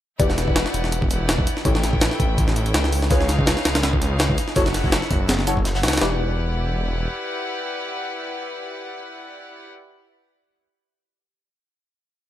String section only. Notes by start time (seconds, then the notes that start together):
0.19 E4 G4 B4 D5 F#5
1.10 E4 G4 B4 D5 F#5
1.65 E4 A4 B4 C#5 G5
2.56 E4 A4 B4 C#5 G5
3.11 D#4 G#4 B4 C#5 F5
4.02 D#4 G#4 B4 C#5 F5
4.57 E4 F#4 A4 C#5 F#5
5.75 E4 F#4 A4 C#5 F#5
5.83 E4 F#4 A4 C#5 F#5
6.02 E4 G4 B4 D5 F#5